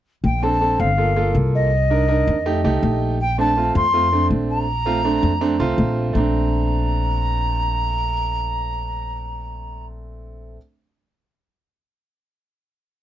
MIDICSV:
0, 0, Header, 1, 4, 480
1, 0, Start_track
1, 0, Key_signature, -2, "major"
1, 0, Tempo, 369231
1, 313, Time_signature, 4, 2, 24, 8
1, 16931, End_track
2, 0, Start_track
2, 0, Title_t, "Flute"
2, 0, Program_c, 0, 73
2, 320, Note_on_c, 0, 79, 87
2, 563, Note_on_c, 0, 81, 92
2, 582, Note_off_c, 0, 79, 0
2, 1042, Note_on_c, 0, 77, 86
2, 1061, Note_off_c, 0, 81, 0
2, 1760, Note_off_c, 0, 77, 0
2, 2015, Note_on_c, 0, 75, 95
2, 3876, Note_off_c, 0, 75, 0
2, 4172, Note_on_c, 0, 79, 103
2, 4390, Note_off_c, 0, 79, 0
2, 4419, Note_on_c, 0, 81, 101
2, 4856, Note_off_c, 0, 81, 0
2, 4891, Note_on_c, 0, 84, 101
2, 5555, Note_off_c, 0, 84, 0
2, 5851, Note_on_c, 0, 82, 99
2, 7712, Note_off_c, 0, 82, 0
2, 7999, Note_on_c, 0, 82, 97
2, 12824, Note_off_c, 0, 82, 0
2, 16931, End_track
3, 0, Start_track
3, 0, Title_t, "Grand piano"
3, 0, Program_c, 1, 0
3, 553, Note_on_c, 1, 60, 80
3, 556, Note_on_c, 1, 62, 74
3, 560, Note_on_c, 1, 69, 85
3, 722, Note_off_c, 1, 60, 0
3, 724, Note_off_c, 1, 62, 0
3, 726, Note_off_c, 1, 69, 0
3, 787, Note_on_c, 1, 60, 70
3, 793, Note_on_c, 1, 62, 63
3, 795, Note_on_c, 1, 69, 79
3, 1127, Note_off_c, 1, 60, 0
3, 1131, Note_off_c, 1, 62, 0
3, 1132, Note_off_c, 1, 69, 0
3, 1268, Note_on_c, 1, 58, 71
3, 1273, Note_on_c, 1, 65, 65
3, 1277, Note_on_c, 1, 69, 81
3, 1440, Note_off_c, 1, 58, 0
3, 1443, Note_off_c, 1, 65, 0
3, 1445, Note_off_c, 1, 69, 0
3, 1506, Note_on_c, 1, 58, 73
3, 1512, Note_on_c, 1, 65, 69
3, 1515, Note_on_c, 1, 69, 86
3, 2184, Note_off_c, 1, 58, 0
3, 2187, Note_off_c, 1, 65, 0
3, 2189, Note_off_c, 1, 69, 0
3, 2474, Note_on_c, 1, 62, 82
3, 2478, Note_on_c, 1, 63, 69
3, 2483, Note_on_c, 1, 70, 90
3, 2644, Note_off_c, 1, 62, 0
3, 2646, Note_off_c, 1, 63, 0
3, 2649, Note_off_c, 1, 70, 0
3, 2704, Note_on_c, 1, 62, 82
3, 2712, Note_on_c, 1, 63, 76
3, 2714, Note_on_c, 1, 70, 89
3, 3048, Note_off_c, 1, 62, 0
3, 3051, Note_off_c, 1, 63, 0
3, 3053, Note_off_c, 1, 70, 0
3, 3193, Note_on_c, 1, 57, 86
3, 3197, Note_on_c, 1, 63, 78
3, 3200, Note_on_c, 1, 67, 97
3, 3364, Note_off_c, 1, 57, 0
3, 3366, Note_off_c, 1, 63, 0
3, 3368, Note_off_c, 1, 67, 0
3, 3435, Note_on_c, 1, 57, 95
3, 3440, Note_on_c, 1, 63, 86
3, 3443, Note_on_c, 1, 67, 99
3, 4109, Note_off_c, 1, 57, 0
3, 4112, Note_off_c, 1, 63, 0
3, 4113, Note_off_c, 1, 67, 0
3, 4395, Note_on_c, 1, 57, 78
3, 4397, Note_on_c, 1, 60, 72
3, 4404, Note_on_c, 1, 62, 89
3, 4565, Note_off_c, 1, 57, 0
3, 4566, Note_off_c, 1, 60, 0
3, 4570, Note_off_c, 1, 62, 0
3, 4638, Note_on_c, 1, 57, 68
3, 4644, Note_on_c, 1, 60, 66
3, 4647, Note_on_c, 1, 65, 76
3, 4975, Note_off_c, 1, 57, 0
3, 4978, Note_off_c, 1, 60, 0
3, 4979, Note_off_c, 1, 65, 0
3, 5115, Note_on_c, 1, 57, 77
3, 5118, Note_on_c, 1, 60, 65
3, 5123, Note_on_c, 1, 65, 81
3, 5285, Note_off_c, 1, 57, 0
3, 5287, Note_off_c, 1, 60, 0
3, 5289, Note_off_c, 1, 65, 0
3, 5361, Note_on_c, 1, 57, 77
3, 5362, Note_on_c, 1, 60, 70
3, 5367, Note_on_c, 1, 62, 82
3, 6032, Note_off_c, 1, 57, 0
3, 6032, Note_off_c, 1, 60, 0
3, 6035, Note_off_c, 1, 62, 0
3, 6313, Note_on_c, 1, 57, 82
3, 6318, Note_on_c, 1, 60, 77
3, 6322, Note_on_c, 1, 65, 91
3, 6484, Note_off_c, 1, 57, 0
3, 6487, Note_off_c, 1, 60, 0
3, 6489, Note_off_c, 1, 65, 0
3, 6556, Note_on_c, 1, 57, 82
3, 6559, Note_on_c, 1, 60, 77
3, 6564, Note_on_c, 1, 62, 92
3, 6893, Note_off_c, 1, 57, 0
3, 6895, Note_off_c, 1, 60, 0
3, 6897, Note_off_c, 1, 62, 0
3, 7031, Note_on_c, 1, 57, 88
3, 7035, Note_on_c, 1, 60, 81
3, 7038, Note_on_c, 1, 62, 97
3, 7203, Note_off_c, 1, 57, 0
3, 7205, Note_off_c, 1, 60, 0
3, 7206, Note_off_c, 1, 62, 0
3, 7272, Note_on_c, 1, 57, 89
3, 7277, Note_on_c, 1, 60, 83
3, 7279, Note_on_c, 1, 65, 100
3, 7947, Note_off_c, 1, 57, 0
3, 7949, Note_off_c, 1, 60, 0
3, 7950, Note_off_c, 1, 65, 0
3, 7970, Note_on_c, 1, 57, 80
3, 7998, Note_on_c, 1, 60, 72
3, 8024, Note_on_c, 1, 62, 86
3, 13720, Note_off_c, 1, 57, 0
3, 13733, Note_off_c, 1, 60, 0
3, 13746, Note_off_c, 1, 62, 0
3, 16931, End_track
4, 0, Start_track
4, 0, Title_t, "Upright bass"
4, 0, Program_c, 2, 32
4, 307, Note_on_c, 2, 34, 90
4, 981, Note_off_c, 2, 34, 0
4, 1032, Note_on_c, 2, 31, 92
4, 1705, Note_off_c, 2, 31, 0
4, 1750, Note_on_c, 2, 36, 90
4, 2879, Note_off_c, 2, 36, 0
4, 2956, Note_on_c, 2, 41, 96
4, 3404, Note_off_c, 2, 41, 0
4, 3435, Note_on_c, 2, 36, 66
4, 3660, Note_off_c, 2, 36, 0
4, 3673, Note_on_c, 2, 34, 92
4, 4801, Note_off_c, 2, 34, 0
4, 4876, Note_on_c, 2, 41, 99
4, 5547, Note_off_c, 2, 41, 0
4, 5596, Note_on_c, 2, 34, 88
4, 6721, Note_off_c, 2, 34, 0
4, 6796, Note_on_c, 2, 41, 95
4, 7243, Note_off_c, 2, 41, 0
4, 7276, Note_on_c, 2, 36, 71
4, 7500, Note_off_c, 2, 36, 0
4, 7513, Note_on_c, 2, 34, 92
4, 7939, Note_off_c, 2, 34, 0
4, 7994, Note_on_c, 2, 34, 95
4, 13732, Note_off_c, 2, 34, 0
4, 16931, End_track
0, 0, End_of_file